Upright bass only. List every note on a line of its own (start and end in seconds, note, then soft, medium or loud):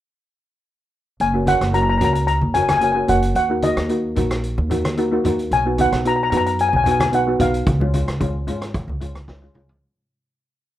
1.20 1.58 F#1 medium
1.61 1.98 F#1 medium
2.01 2.39 C#2 medium
2.41 3.04 F#1 medium
3.08 3.33 F#1 medium
3.35 3.73 D#2 medium
3.77 4.13 D#2 medium
4.17 4.55 A#1 medium
4.58 5.21 D#2 medium
5.24 5.49 D#2 medium
5.51 5.89 B1 medium
5.93 6.29 B1 medium
6.32 6.70 F#2 medium
6.73 7.36 B1 medium
7.40 7.65 B1 medium
7.67 8.05 C#2 medium
8.08 8.45 C#2 medium
8.47 8.85 G#1 medium
8.88 9.51 C#2 medium
9.54 9.79 C#2 medium